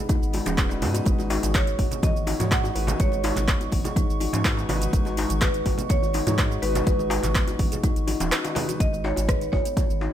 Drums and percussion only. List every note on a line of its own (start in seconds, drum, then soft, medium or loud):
0.09 kick loud
0.09 closed hi-hat medium
0.09 muted conga soft
0.09 djembe tone medium
0.09 high conga medium
0.09 shaker medium
0.23 shaker soft
0.34 open hi-hat medium
0.34 muted conga medium
0.34 djembe tone medium
0.46 closed hi-hat soft
0.46 djembe slap medium
0.46 high conga loud
0.46 shaker medium
0.58 kick loud
0.58 cross-stick loud
0.58 clap loud
0.58 closed hi-hat medium
0.58 muted conga soft
0.58 shaker medium
0.69 djembe slap medium
0.69 djembe tone medium
0.69 shaker soft
0.82 open hi-hat medium
0.82 djembe slap medium
0.82 low conga loud
0.94 closed hi-hat soft
0.94 muted conga medium
0.94 djembe tone medium
0.94 shaker medium
1.06 kick loud
1.06 closed hi-hat medium
1.06 shaker medium
1.19 muted conga soft
1.19 djembe tone medium
1.19 shaker soft
1.30 open hi-hat medium
1.30 djembe slap loud
1.43 closed hi-hat soft
1.43 muted conga soft
1.43 high conga medium
1.43 djembe tone medium
1.43 shaker medium
1.55 kick loud
1.55 cross-stick loud
1.55 clap loud
1.55 closed hi-hat medium
1.55 shaker medium
1.67 closed hi-hat soft
1.67 shaker soft
1.79 kick medium
1.79 open hi-hat medium
1.79 muted conga soft
1.79 high conga medium
1.79 djembe tone medium
1.91 closed hi-hat soft
1.91 low conga medium
1.91 shaker medium
2.03 kick loud
2.03 closed hi-hat medium
2.03 muted conga soft
2.03 high conga loud
2.03 djembe tone medium
2.03 shaker medium
2.16 shaker soft
2.27 open hi-hat medium
2.27 djembe slap medium
2.27 muted conga medium
2.40 closed hi-hat soft
2.40 high conga loud
2.40 djembe tone medium
2.40 low conga medium
2.40 shaker medium
2.51 kick loud
2.51 cross-stick loud
2.51 clap loud
2.51 closed hi-hat medium
2.51 shaker medium
2.64 djembe tone medium
2.64 shaker soft
2.76 open hi-hat medium
2.87 closed hi-hat soft
2.87 muted conga medium
2.87 djembe slap medium
2.87 high conga medium
2.87 low conga loud
2.87 shaker medium
3.00 kick loud
3.00 closed hi-hat medium
3.00 djembe tone medium
3.00 shaker medium
3.12 muted conga medium
3.12 shaker soft
3.24 open hi-hat medium
3.24 djembe slap loud
3.24 djembe tone medium
3.36 clap soft
3.36 closed hi-hat soft
3.36 muted conga soft
3.36 high conga medium
3.36 low conga medium
3.36 shaker medium
3.48 kick loud
3.48 cross-stick loud
3.48 clap loud
3.48 closed hi-hat medium
3.48 shaker medium
3.61 closed hi-hat soft
3.61 djembe tone medium
3.61 shaker soft
3.72 kick medium
3.72 open hi-hat medium
3.72 muted conga medium
3.72 high conga medium
3.84 closed hi-hat soft
3.84 djembe tone medium
3.84 low conga medium
3.84 shaker medium
3.96 kick loud
3.96 closed hi-hat medium
3.96 muted conga soft
3.96 high conga medium
3.96 shaker medium
4.10 shaker soft
4.20 open hi-hat medium
4.20 muted conga medium
4.20 djembe tone medium
4.33 closed hi-hat medium
4.33 djembe slap medium
4.33 high conga loud
4.33 shaker medium
4.45 kick loud
4.45 cross-stick loud
4.45 clap loud
4.45 closed hi-hat medium
4.45 djembe tone medium
4.45 shaker medium
4.57 djembe slap medium
4.57 shaker soft
4.69 open hi-hat medium
4.69 djembe slap medium
4.69 low conga medium
4.81 closed hi-hat soft
4.81 muted conga soft
4.81 djembe tone medium
4.81 shaker medium
4.93 kick loud
4.93 closed hi-hat medium
4.93 shaker medium
5.05 muted conga soft
5.05 djembe tone medium
5.05 shaker soft
5.17 open hi-hat medium
5.17 djembe slap loud
5.29 closed hi-hat soft
5.29 muted conga soft
5.29 high conga medium
5.29 shaker medium
5.41 kick loud
5.41 cross-stick loud
5.41 clap loud
5.41 closed hi-hat medium
5.41 djembe tone medium
5.41 shaker medium
5.54 closed hi-hat soft
5.54 shaker soft
5.66 kick medium
5.66 open hi-hat medium
5.66 muted conga soft
5.66 high conga medium
5.66 djembe tone medium
5.78 closed hi-hat soft
5.78 low conga medium
5.78 shaker medium
5.89 kick loud
5.89 closed hi-hat medium
5.89 muted conga soft
5.89 high conga medium
5.89 shaker medium
6.02 djembe tone medium
6.02 shaker soft
6.13 open hi-hat loud
6.13 muted conga soft
6.13 djembe slap medium
6.27 closed hi-hat soft
6.27 djembe tone medium
6.27 high conga loud
6.27 low conga medium
6.27 shaker medium
6.38 kick loud
6.38 cross-stick loud
6.38 clap loud
6.38 closed hi-hat medium
6.38 muted conga soft
6.38 shaker medium
6.52 shaker soft
6.63 open hi-hat medium
6.63 djembe tone medium
6.75 closed hi-hat soft
6.75 muted conga medium
6.75 djembe slap medium
6.75 high conga medium
6.75 low conga loud
6.75 shaker medium
6.87 kick loud
6.87 closed hi-hat medium
6.87 djembe tone medium
6.87 shaker medium
6.99 muted conga medium
6.99 shaker soft
7.10 open hi-hat loud
7.10 djembe slap loud
7.23 clap soft
7.23 closed hi-hat soft
7.23 muted conga soft
7.23 high conga medium
7.23 djembe tone medium
7.23 low conga medium
7.23 shaker medium
7.35 kick loud
7.35 cross-stick loud
7.35 clap loud
7.35 closed hi-hat medium
7.35 shaker medium
7.47 closed hi-hat soft
7.47 djembe tone medium
7.47 shaker soft
7.59 kick medium
7.59 open hi-hat loud
7.59 muted conga medium
7.59 high conga medium
7.72 closed hi-hat soft
7.72 low conga medium
7.72 shaker medium
7.84 kick loud
7.84 closed hi-hat medium
7.84 muted conga soft
7.84 high conga medium
7.84 djembe tone medium
7.84 shaker medium
7.96 closed hi-hat soft
7.96 shaker soft
8.07 open hi-hat loud
8.07 muted conga medium
8.07 djembe tone medium
8.20 closed hi-hat soft
8.20 djembe slap medium
8.20 high conga loud
8.20 shaker medium
8.32 cross-stick loud
8.32 clap loud
8.32 closed hi-hat medium
8.32 shaker medium
8.44 closed hi-hat soft
8.44 djembe slap medium
8.44 djembe tone medium
8.44 shaker soft
8.55 open hi-hat loud
8.55 djembe slap medium
8.55 low conga loud
8.68 closed hi-hat soft
8.68 muted conga medium
8.68 djembe tone medium
8.68 shaker medium
8.80 kick loud
8.80 closed hi-hat medium
8.80 shaker medium
8.94 shaker soft
9.05 djembe slap loud
9.16 closed hi-hat soft
9.16 djembe tone medium
9.16 shaker medium
9.29 kick loud
9.29 cross-stick loud
9.29 closed hi-hat medium
9.29 shaker medium
9.41 closed hi-hat soft
9.41 shaker soft
9.53 kick medium
9.53 djembe tone medium
9.65 closed hi-hat soft
9.65 shaker medium
9.77 kick loud
9.77 closed hi-hat medium
9.77 djembe tone medium
9.77 shaker medium
9.90 shaker soft
10.01 djembe slap medium